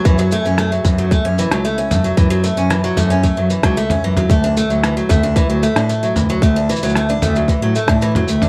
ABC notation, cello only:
X:1
M:4/4
L:1/16
Q:1/4=113
K:F#m
V:1 name="Cello" clef=bass
F,,3 F,,3 F,,3 F,,2 C,, z2 F,, z | F,,3 F,,3 F,,3 F,,2 C,, z2 F,, z | D,,3 D,,3 D,,3 D,,2 A,, z2 D,, z | D,,3 D,,3 D,,3 A,,2 A,,3 D,,2 |]